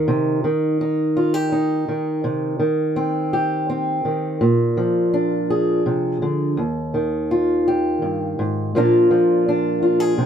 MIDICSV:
0, 0, Header, 1, 2, 480
1, 0, Start_track
1, 0, Tempo, 721154
1, 57, Time_signature, 3, 2, 24, 8
1, 6828, End_track
2, 0, Start_track
2, 0, Title_t, "Steel-string acoustic guitar"
2, 0, Program_c, 0, 25
2, 0, Note_on_c, 0, 51, 53
2, 0, Note_on_c, 0, 63, 47
2, 52, Note_on_c, 0, 48, 65
2, 286, Note_off_c, 0, 51, 0
2, 294, Note_off_c, 0, 48, 0
2, 294, Note_on_c, 0, 51, 51
2, 537, Note_off_c, 0, 63, 0
2, 539, Note_on_c, 0, 63, 51
2, 776, Note_on_c, 0, 65, 46
2, 891, Note_off_c, 0, 65, 0
2, 891, Note_on_c, 0, 67, 45
2, 1005, Note_off_c, 0, 63, 0
2, 1013, Note_on_c, 0, 63, 49
2, 1246, Note_off_c, 0, 51, 0
2, 1254, Note_on_c, 0, 51, 52
2, 1466, Note_off_c, 0, 63, 0
2, 1491, Note_on_c, 0, 48, 65
2, 1493, Note_off_c, 0, 67, 0
2, 1719, Note_off_c, 0, 51, 0
2, 1727, Note_on_c, 0, 51, 53
2, 1733, Note_off_c, 0, 48, 0
2, 1972, Note_on_c, 0, 60, 51
2, 2217, Note_on_c, 0, 67, 51
2, 2452, Note_off_c, 0, 60, 0
2, 2460, Note_on_c, 0, 60, 50
2, 2687, Note_off_c, 0, 51, 0
2, 2695, Note_on_c, 0, 51, 53
2, 2908, Note_off_c, 0, 67, 0
2, 2934, Note_on_c, 0, 46, 66
2, 2935, Note_off_c, 0, 51, 0
2, 2938, Note_off_c, 0, 60, 0
2, 3177, Note_on_c, 0, 53, 52
2, 3418, Note_on_c, 0, 62, 48
2, 3664, Note_on_c, 0, 68, 51
2, 3895, Note_off_c, 0, 46, 0
2, 3900, Note_on_c, 0, 48, 50
2, 4138, Note_off_c, 0, 48, 0
2, 4141, Note_on_c, 0, 50, 54
2, 4349, Note_off_c, 0, 62, 0
2, 4351, Note_off_c, 0, 68, 0
2, 4375, Note_on_c, 0, 39, 62
2, 4379, Note_off_c, 0, 50, 0
2, 4395, Note_off_c, 0, 53, 0
2, 4620, Note_on_c, 0, 51, 47
2, 4866, Note_on_c, 0, 65, 49
2, 5110, Note_on_c, 0, 67, 55
2, 5336, Note_off_c, 0, 39, 0
2, 5338, Note_on_c, 0, 43, 50
2, 5578, Note_off_c, 0, 43, 0
2, 5584, Note_on_c, 0, 44, 57
2, 5793, Note_off_c, 0, 65, 0
2, 5795, Note_off_c, 0, 67, 0
2, 5819, Note_off_c, 0, 51, 0
2, 5821, Note_off_c, 0, 44, 0
2, 5824, Note_on_c, 0, 46, 62
2, 5830, Note_on_c, 0, 53, 55
2, 5834, Note_on_c, 0, 58, 58
2, 5839, Note_on_c, 0, 62, 51
2, 5844, Note_on_c, 0, 65, 60
2, 6054, Note_off_c, 0, 53, 0
2, 6062, Note_on_c, 0, 53, 53
2, 6305, Note_off_c, 0, 62, 0
2, 6313, Note_on_c, 0, 62, 53
2, 6531, Note_off_c, 0, 65, 0
2, 6539, Note_on_c, 0, 65, 49
2, 6656, Note_off_c, 0, 65, 0
2, 6656, Note_on_c, 0, 68, 45
2, 6772, Note_off_c, 0, 46, 0
2, 6775, Note_on_c, 0, 48, 56
2, 6828, Note_off_c, 0, 48, 0
2, 6828, Note_off_c, 0, 53, 0
2, 6828, Note_off_c, 0, 58, 0
2, 6828, Note_off_c, 0, 62, 0
2, 6828, Note_off_c, 0, 68, 0
2, 6828, End_track
0, 0, End_of_file